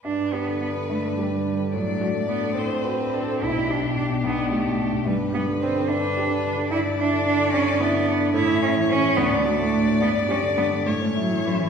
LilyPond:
<<
  \new Staff \with { instrumentName = "Violin" } { \time 6/8 \key g \major \tempo 4. = 72 b'2. | d''4. c''8 b'8 a'8 | g'2. | b'4. b'4. |
\key a \mixolydian d''2. | cis''4. d''4.~ | d''4. cis''4. | }
  \new Staff \with { instrumentName = "Cello" } { \time 6/8 \key g \major d'8 b8 b8 a8 g4 | fis8 a8 b8 c'4. | e'8 d'8 d'8 b8 a4 | g8 b8 c'8 d'4. |
\key a \mixolydian e'8 d'8 d'8 cis'8 b4 | e'8 cis'8 cis'8 b8 a4 | b8 cis'8 b8 a8 fis8 e8 | }
  \new Staff \with { instrumentName = "Grand piano" } { \time 6/8 \key g \major g,16 d'16 g'16 d16 d'16 d16 g,16 d'16 g'16 d16 d'16 d16 | a,16 d'16 fis'16 a16 d'16 a16 a,16 d'16 fis'16 a16 d'16 a16 | b,,16 d'16 g'16 b,16 d'16 b,16 b,,16 d'16 g'16 b,16 d'16 b,16 | g,16 d'16 g'16 d16 d'16 d16 g,16 d'16 g'16 d16 d'16 d16 |
\key a \mixolydian g,16 d'16 e'16 d16 d'16 d16 g,16 d'16 e'16 d16 d'16 d16 | a,16 cis'16 e'16 e16 cis'16 e16 d,16 d'16 fis'16 a,16 d'16 a,16 | g,16 d'16 g'16 d16 d'16 d16 a,16 cis'16 e'16 e16 cis'16 e16 | }
>>